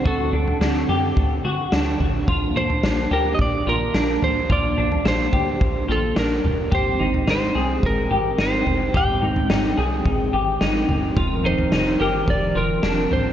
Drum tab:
SD |----o-------o---|----o-------o---|----o-------o---|----o-------o---|
FT |o--o----o-----o-|o--o----o-----o-|o--o----o-----o-|o--o----o-----o-|
BD |o-------o-------|o-------o-------|o-----o-o-------|o-------o-------|

SD |----o-------o---|----o-------o---|
FT |o--o----o-----o-|o--o----o-----o-|
BD |o-------o-------|o-------o-------|